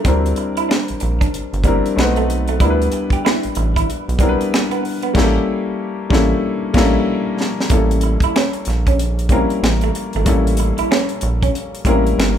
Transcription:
0.04 analog synth bass D2, grand piano G3 C4 D4 E4 A#4, clean electric guitar C4, kick, closed hi-hat
0.26 closed hi-hat
0.36 muted clean electric guitar stroke, closed hi-hat
0.57 clean electric guitar E4, closed hi-hat
0.69 clean electric guitar D4, finger snap, snare
0.88 analog synth bass A#1, closed hi-hat
1.00 analog synth bass A#1, muted clean electric guitar stroke, closed hi-hat
1.21 clean electric guitar D4, kick, closed hi-hat
1.34 analog synth bass G1, closed hi-hat
1.53 analog synth bass G1, closed hi-hat
1.63 grand piano G3 C4 D4 E4 A#4, clean electric guitar A#3, kick, closed hi-hat
1.86 closed hi-hat
1.96 analog synth bass B1, grand piano A3 C4 D#4 F#4 B4, finger snap, snare
2.16 clean electric guitar A3, closed hi-hat
2.30 muted clean electric guitar stroke, closed hi-hat
2.48 clean electric guitar A3, closed hi-hat
2.60 analog synth bass D2, grand piano G3 B3 D4 E4 A#4, clean electric guitar E4, kick, closed hi-hat
2.70 grand piano B4
2.82 closed hi-hat
2.92 muted clean electric guitar stroke, closed hi-hat
3.10 clean electric guitar G4, kick, closed hi-hat
3.25 clean electric guitar E4, finger snap, snare
3.43 analog synth bass A1, closed hi-hat
3.55 analog synth bass A1, muted clean electric guitar stroke, closed hi-hat
3.76 clean electric guitar E4, kick, closed hi-hat
3.89 analog synth bass B1, closed hi-hat
4.09 analog synth bass B1, closed hi-hat
4.18 grand piano G3 B3 D4 E4 A#4, clean electric guitar C4, kick, closed hi-hat
4.29 grand piano B4
4.41 closed hi-hat
4.54 finger snap, snare
4.71 clean electric guitar B3, closed hi-hat
4.84 muted clean electric guitar stroke, open hi-hat
5.03 clean electric guitar B3, closed hi-hat
5.13 analog synth bass A1, grand piano G3 A#3 C#4 E4 G4, kick, crash
5.18 snare
5.24 grand piano A4
6.10 analog synth bass A1, grand piano G3 A#3 C#4 E4 A4, kick, snare
6.74 analog synth bass A1, grand piano G3 A#3 C#4 E4 A4, kick, snare, crash
7.41 snare
7.60 snare
7.70 analog synth bass A1, grand piano G3 A#3 C#4 E4 A4, clean electric guitar A3, kick, closed hi-hat
7.91 closed hi-hat
8.01 muted clean electric guitar stroke, closed hi-hat
8.20 analog synth bass A#1, clean electric guitar E4, kick, closed hi-hat
8.36 clean electric guitar C#4, finger snap, snare
8.53 closed hi-hat
8.65 analog synth bass A#1, muted clean electric guitar stroke, snare, closed hi-hat
8.87 clean electric guitar C#4, kick, closed hi-hat
8.99 closed hi-hat
9.19 closed hi-hat
9.29 grand piano G3 A#3 C#4 E4 A#4, clean electric guitar C4, kick, closed hi-hat
9.50 closed hi-hat
9.63 analog synth bass A1, finger snap, snare
9.81 clean electric guitar A3, closed hi-hat
9.95 muted clean electric guitar stroke, closed hi-hat
10.13 analog synth bass G#1, clean electric guitar A3, closed hi-hat
10.25 analog synth bass A1, grand piano G3 A#3 C#4 E4 A4, clean electric guitar A3, kick, closed hi-hat
10.47 closed hi-hat
10.57 muted clean electric guitar stroke, closed hi-hat
10.78 analog synth bass A#1, clean electric guitar E4, closed hi-hat
10.91 clean electric guitar C#4, finger snap, snare
11.09 closed hi-hat
11.21 analog synth bass A#1, muted clean electric guitar stroke, closed hi-hat
11.43 clean electric guitar C#4, kick, closed hi-hat
11.55 closed hi-hat
11.75 closed hi-hat
11.85 analog synth bass A1, grand piano G3 A#3 C#4 E4 A#4, clean electric guitar C4, kick, closed hi-hat
12.07 closed hi-hat
12.18 analog synth bass G1, finger snap, snare

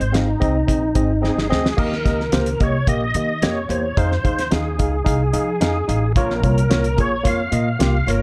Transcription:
Already playing: tine electric piano G#2, tonewheel organ C5
0.00 upright bass G#1, closed hi-hat
0.12 tine electric piano C4 G#4 F5, tonewheel organ D#4, snare, closed hi-hat
0.40 upright bass C2, tine electric piano C4 G#4 D#5, kick, closed hi-hat
0.67 upright bass A#1, tine electric piano C4 G#4 D#5, kick, closed hi-hat
0.95 upright bass G#1, tine electric piano C4 G#4 D#5, kick, closed hi-hat
1.22 tine electric piano C4 G#4 D#5, tonewheel organ G#4, snare
1.37 upright bass G1, snare
1.50 upright bass D2, tine electric piano C4 G#4 D#5, snare
1.66 snare
1.77 upright bass D#2, tine electric piano D#3 A#3 G4 D#5, tonewheel organ A#4, kick, crash
1.93 snare
2.04 upright bass C#2, tine electric piano A#3 G4 D#5, kick, snare, closed hi-hat
2.21 snare
2.32 upright bass C#2, tine electric piano A#3 G4 C5, snare, closed hi-hat
2.46 closed hi-hat
2.60 upright bass C2, tine electric piano A#3 G4 D#5, tonewheel organ C#5, kick, closed hi-hat
2.87 upright bass A#1, tine electric piano A#3 G4 D#5, tonewheel organ D#5, kick, closed hi-hat
3.14 upright bass D#3, tine electric piano A#3 G4 D#5, closed hi-hat
3.42 upright bass F2, tine electric piano A#3 G4 D#5, tonewheel organ C#5, snare, closed hi-hat
3.69 upright bass E2, tine electric piano A#3 G4 C5, tonewheel organ C#5, closed hi-hat
3.97 upright bass F2, tine electric piano D#4 G#4 F5, tonewheel organ C5, kick, closed hi-hat
4.12 snare
4.24 upright bass D#2, tine electric piano D#4 G#4 F5, kick, closed hi-hat
4.39 snare, closed hi-hat
4.51 upright bass D#2, tine electric piano D#4 G#4 F5, tonewheel organ G#4, snare, closed hi-hat
4.79 upright bass C#2, tine electric piano D#4 G#4 F5, kick, closed hi-hat
5.05 upright bass C2, tine electric piano D#4 G#4 F5, kick, closed hi-hat
5.33 upright bass F3, tine electric piano D#4 G#4 F5, closed hi-hat
5.61 upright bass F2, tine electric piano D#4 G#4 F5, tonewheel organ G#4, snare, closed hi-hat
5.88 upright bass A1, tine electric piano D#4 G#4 F5, closed hi-hat
6.16 upright bass A#1, tine electric piano A#2 A#3 F4 C#5, tonewheel organ A#4, kick, closed hi-hat
6.30 snare
6.43 upright bass C2, tine electric piano A#3 F4 C#5, kick, closed hi-hat
6.58 closed hi-hat
6.69 upright bass C2, tine electric piano A#3 F4 C#5, snare, closed hi-hat
6.84 closed hi-hat
6.97 upright bass A#1, tine electric piano A#3 F4 G#4, tonewheel organ C#5, kick, closed hi-hat
7.24 upright bass F2, tine electric piano A#3 F4 C#5, tonewheel organ F5, kick, closed hi-hat
7.52 upright bass A#2, tine electric piano A#3 F4 D#5, closed hi-hat
7.79 upright bass C2, tine electric piano A#3 F4 G4, snare, closed hi-hat
8.07 upright bass G1, tine electric piano A#3 F4 C#5, tonewheel organ A#4, closed hi-hat

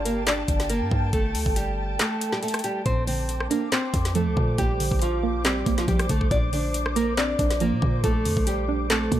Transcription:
Already playing: 808-style bass G1, ambient pad G5 A5
0.05 nylon-string guitar A#3 A#4, closed hi-hat
0.27 nylon-string guitar D4 D5, snare, clap, closed hi-hat
0.48 808-style bass G1, kick, closed hi-hat
0.60 snare, closed hi-hat
0.70 nylon-string guitar A#3 A#4, closed hi-hat
0.81 808-style bass G2
0.91 808-style bass G2, kick
1.13 808-style bass G1, nylon-string guitar A3 A4, kick, closed hi-hat
1.35 808-style bass D2, open hi-hat
1.46 808-style bass G1, kick
1.56 nylon-string guitar G3 G4, closed hi-hat
1.99 nylon-string guitar A3 A4, snare, clap, closed hi-hat
2.21 closed hi-hat
2.32 nylon-string guitar G3 G4, snare
2.43 nylon-string guitar A3 A4, closed hi-hat
2.48 closed hi-hat
2.54 cross-stick, closed hi-hat
2.59 closed hi-hat
2.64 nylon-string guitar G3 G4, closed hi-hat
2.86 808-style bass A#1, synth pluck A#2, nylon-string guitar C4 C5, ambient pad C5 D6, kick, closed hi-hat
3.07 synth pluck D3, nylon-string guitar C4 C5, open hi-hat
3.29 closed hi-hat
3.40 cross-stick
3.50 nylon-string guitar A#3 A#4, synth pluck D4, closed hi-hat
3.72 synth pluck C4, nylon-string guitar C4 C5, snare, clap, closed hi-hat
3.94 808-style bass F2, kick, closed hi-hat
4.05 snare, closed hi-hat
4.15 synth pluck F3, nylon-string guitar A3 A4, closed hi-hat
4.27 808-style bass D2
4.37 808-style bass A#2, synth pluck D3, kick
4.58 808-style bass A#1, synth pluck A#2, nylon-string guitar G3 G4, kick, closed hi-hat
4.80 synth pluck D3, open hi-hat
4.91 808-style bass A#1, kick
5.02 nylon-string guitar F3 F4, closed hi-hat
5.23 synth pluck A#3
5.45 nylon-string guitar G3 G4, synth pluck C4, snare, clap, closed hi-hat
5.66 808-style bass A#1, synth pluck A#3, kick, closed hi-hat
5.78 nylon-string guitar F3 F4, snare, closed hi-hat
5.88 808-style bass A#1, synth pluck F3, nylon-string guitar G3 G4, kick, closed hi-hat
5.99 cross-stick, closed hi-hat
6.09 808-style bass A#1, synth pluck D3, nylon-string guitar A3 A4, kick, closed hi-hat
6.21 kick
6.31 808-style bass A#1, synth pluck A#2, nylon-string guitar D4 D5, kick, closed hi-hat
6.53 synth pluck D3, nylon-string guitar D4 D5, open hi-hat
6.74 closed hi-hat
6.86 cross-stick
6.96 synth pluck A#3, nylon-string guitar A#3 A#4, closed hi-hat
7.17 synth pluck C4, nylon-string guitar D4 D5, snare, clap, closed hi-hat
7.39 808-style bass A#1, synth pluck D4, kick, closed hi-hat
7.51 snare, closed hi-hat
7.60 synth pluck F3, nylon-string guitar A#3 A#4, closed hi-hat
7.72 808-style bass A#2
7.82 808-style bass A#2, synth pluck D3, kick
8.04 808-style bass A#1, synth pluck A#2, nylon-string guitar A3 A4, kick, closed hi-hat
8.25 808-style bass F2, synth pluck D3, open hi-hat
8.37 808-style bass A#1, kick
8.47 nylon-string guitar G3 G4, closed hi-hat
8.68 synth pluck D4
8.90 nylon-string guitar A3 A4, synth pluck C4, snare, clap, closed hi-hat
9.12 808-style bass A#2, synth pluck A#3, kick, closed hi-hat

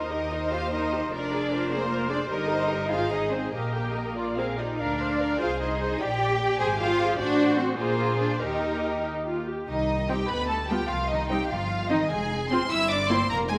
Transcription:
Already playing: double bass section D#2, cello section D#4, violin section D#5
0.11 viola section G4 D#5, violin section A#4
0.32 viola section D#4 A#4, violin section C5
0.52 cello section F4, viola section G4 D#5, violin section F5
0.72 viola section D#4 A#4, cello section D#4, violin section D#5
0.92 viola section G4 D#5
1.12 double bass section F1, cello section D4, viola section F4 A#4, violin section A#4 D5
1.33 viola section G#4 D5, violin section G#4
1.50 viola section F4 A#4, violin section C5
1.70 cello section A#3, viola section G#4 D5, violin section A#4
1.89 viola section F4 A#4
2.09 cello section D4, viola section G#4 D5, violin section D5
2.29 double bass section G1, cello section D#4, viola section G4 A#4, violin section A#4 D#5
2.48 viola section G4 A#4, violin section C5
2.69 viola section G4 A#4, violin section A#4
2.89 double bass section G#1, viola section D#4 C5, cello section F4, violin section G#4 F5
3.11 cello section D#4, viola section G#4 D#5, violin section D#5
3.32 cello section C4, viola section D#4 C5, violin section C5
3.52 double bass section A#1, cello section A#3, violin section G4 A#4, viola section A#4 D#5
3.74 viola section G4 G5
3.95 viola section A#4 D#5
4.17 viola section F4 D5, violin section F4
4.37 cello section C4, violin section G#4 C5, viola section A#4 F5
4.58 cello section D#4, viola section F4 D5, violin section G4 D#5
4.79 double bass section D2, cello section D4, viola section A#4 F5, violin section A#4 D5
4.98 viola section A#4 F5, violin section C5
5.18 viola section A#4 F5, violin section A#4
5.39 double bass section C2, cello section F4, viola section G#4 C5, violin section G#4 F5
5.59 cello section D#4, viola section G#4 C5, violin section D#5
5.81 viola section G#4 C5
6.00 double bass section A#1, cello section G4, viola section G4 D5, violin section G4 G5
6.20 viola section G4 D5
6.40 viola section G4 D5
6.59 double bass section G#1, viola section G#4 C5, cello section G#4, violin section G#5
6.79 cello section F4, viola section G#4 C5, violin section F5
7.01 viola section G#4 C5
7.18 double bass section A1, cello section D4, viola section F#4 C5, violin section F#4 D5
7.58 cello section C4, violin section C5
7.78 double bass section A#1, cello section A#3, violin section F4 A#4, viola section G#4 C5
8.20 cello section D4, violin section D5
8.40 double bass section D#2, cello section D#4, violin section G4 D#5, viola section G4 A#4
9.05 viola section D#4
9.27 viola section F4
9.47 viola section G4
9.68 double bass section C2, cello section D#3, violin section D#4 D#5
10.08 cello section G3, viola section C4 D#4, violin section G4 G5
10.28 double bass section D2, cello section B3, violin section B4 B5
10.48 cello section A3, violin section A4 A5
10.68 cello section G3, viola section B3 F4, violin section G4 G5
10.88 double bass section C2, cello section F3, violin section F4 F5
11.09 cello section D#3, violin section D#4 D#5
11.29 cello section G3, viola section C4 D#4, violin section G4 G5
11.49 double bass section G1, cello section F3, violin section F4 F5
11.89 cello section D#3, viola section C4 D#4, violin section D#4 D#5
12.09 double bass section F1, cello section G#3, violin section G#4 G#5
12.49 cello section C4, viola section C4 F4, violin section C5 C6
12.69 double bass section G1, cello section E4, violin section E5 E6
12.89 cello section D4, violin section D5 D6
13.10 viola section A#3 E4, cello section C4, violin section C5 C6
13.29 double bass section F1, cello section A#3, violin section A#4 A#5
13.48 cello section G#3, violin section G#4 G#5

